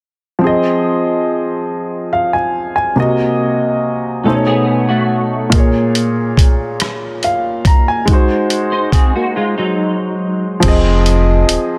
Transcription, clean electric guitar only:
4.25 C#4 A4
4.47 B3 G#4
4.89 A3 F#4
8.72 D#4 C5
8.93 C4 G#4
9.16 A#3 F#4
9.36 G#3 F4
9.58 F#3 D#4

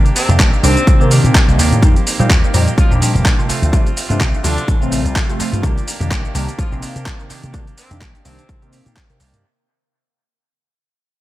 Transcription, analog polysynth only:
0.29 C3 D#3 A#3 D4
0.63 C3 D#3 A#3 D4
1.00 C3 D#3 A#3 C4
1.48 C3 D#3 A#3
1.82 A#2 F3 G3 D#4
2.20 A#2 F3 G3 D#4
2.54 A#2 F3 G3 D#4
2.91 A#2 F3 G3 D4
3.38 C3 F3 A3 F4
3.73 C3 F3 A3 D4
4.10 C3 F3 A3 D4
4.44 C3 F3 A3 D4
4.81 C3 F3 A3 C4
5.29 C3 F3 A3 F4
5.63 C3 D#3 A#3 D4
6.00 C3 D#3 A#3 D4
6.34 C3 D#3 A#3 D4
6.72 C3 D#3 A#3 C4
7.20 C3 D#3 A#3
7.54 C3 D#3 A#3 D4
7.91 C3 D#3 A#3 D4
8.25 C3 D#3 A#3 D4
8.62 C3 D#3 A#3 C4
9.10 C3 D#3 A#3

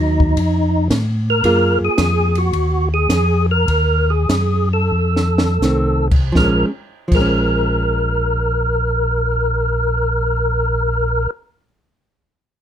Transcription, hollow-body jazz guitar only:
Already playing: F#3 A#3 D#4
1.45 A#3 F4 G#4
5.63 D#3 A3 C4
6.32 F3
6.39 G#3
6.44 C#4
7.08 F3
7.16 G#3
7.21 C#4

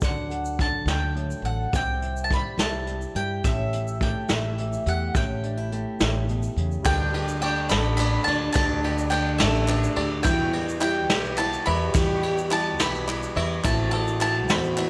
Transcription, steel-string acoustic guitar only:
0.01 D3 F#3 D4 A4
0.30 A4
0.58 F#3 A4
1.15 A2
1.44 A4
1.72 C3 C4
2.02 E4
2.30 G3 G4
2.59 E4
2.87 G2
3.16 G4
3.45 A2 C#4
3.74 E4
4.01 A3 G4
4.31 E4
4.59 E3
4.87 G4
5.16 A2 C#4
5.44 D4
5.57 E4
5.72 A3 G4
6.01 A2
6.29 B2
6.58 C#3

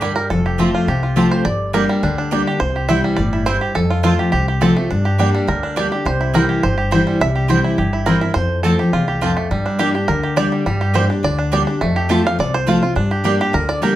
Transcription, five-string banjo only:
Already playing: D4 G4 D5
0.02 G3
0.16 A#4
0.30 A4
0.46 G4
0.60 A3
0.74 F4
0.88 G4
1.03 F4
1.17 G4
1.31 C5
1.45 D5
1.74 A#4
1.89 G3
2.03 D4
2.18 D4
2.32 D4
2.47 G4
2.60 C5
2.76 G4
2.89 E5
3.04 G3
3.16 D5
3.33 E4
3.46 C5
3.61 G4
3.75 A4
3.90 F4
4.04 F4
4.19 G4
4.32 G4
4.48 G4
4.62 A4
4.76 A3
4.91 D4
5.05 G4
5.19 D4
5.34 G3
5.48 A#4
5.63 D4
5.77 D5
5.92 G4
6.06 C5
6.21 E4
6.35 A#4
6.49 G4
6.63 C5
6.78 G4
6.92 C5
7.07 G3
7.21 E5
7.35 G4
7.50 C5
7.64 E4
7.78 G4
7.93 E4
8.06 A#4
8.21 E4
8.34 C5
8.63 A4
8.79 G4
8.93 F4
9.08 G4
9.22 F4
9.37 A3
9.51 G3
9.66 D4
9.79 G4
9.95 G4
10.08 A#4
10.23 G4
10.37 D5
10.52 G3
10.66 G3
10.81 G4
10.95 C5
11.10 D4
11.24 D5
11.39 D4
11.53 D5
11.67 D4
11.81 A3
11.96 G4
12.10 A3
12.27 F5
12.40 D5
12.54 C5
12.69 F4
12.82 F4
12.96 D4
13.11 G4
13.25 D4
13.41 G4
13.54 A#4
13.69 D5
13.83 A#4

